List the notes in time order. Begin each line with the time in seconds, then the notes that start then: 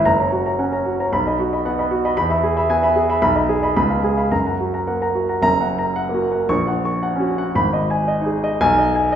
0.05 F#1 A#5
0.19 C#5 A#5
0.32 F#4
0.46 C#5 A#5
0.59 C#4 F#5
0.72 C#5 A#5
0.86 F#4
1.00 C#5 A#5
1.12 B1 B5
1.27 D#5 B5
1.39 F#4
1.53 D#5 B5
1.66 B3 F#5
1.79 D#5 B5
1.91 F#4
2.05 D#5 B5
2.17 E2 B5
2.30 E5 B5
2.43 G#4
2.57 E5 B5
2.69 B3 G#5
2.83 E5 B5
2.96 G#4
3.09 E5 B5
3.22 B1 B5
3.35 D#5 B5
3.49 G#4
3.63 D#5 B5
3.76 C#2 B5
3.90 F5 B5
4.04 G#4
4.17 F5 B5
4.31 F#2 A#5
4.46 F#5 A#5
4.60 F#4
4.73 F#5 A#5
4.87 A#3 F#5
5.01 F#5 A#5
5.15 F#4
5.29 F#5 A#5
5.42 F#1 F#2 A#5
5.61 F#5
5.79 A#5
5.96 F#5
6.09 A#3
6.14 F#4
6.32 F#5
6.49 A#1 C#6
6.67 F#5
6.85 C#6
7.03 F#5
7.16 C#4
7.20 F#4
7.38 F#5
7.55 G#1 B5
7.73 D#5
7.90 G#5
8.08 D#5
8.21 D#4
8.26 G#4
8.44 D#5
8.61 B1 G#5
8.78 D#5
8.95 G#5
9.12 D#5